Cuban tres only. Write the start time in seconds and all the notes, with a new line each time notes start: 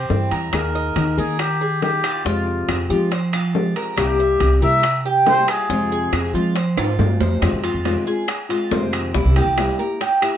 Already playing: C4
0.32 A#4
0.75 D#5
1.18 A#4
1.61 G#4
2.04 F4
2.26 F4
2.90 F4
3.12 C5
3.34 F4
3.76 A#4
4.20 E5
4.62 A#4
5.06 G4
5.49 F4
5.70 F4
5.92 G#4
6.35 F4
6.56 C5
6.78 F4
7.21 C5
7.64 F4
8.07 G#4
8.50 F4
8.72 C5
9.15 E4
9.36 G4
9.79 A#4
10.01 G4
10.23 E5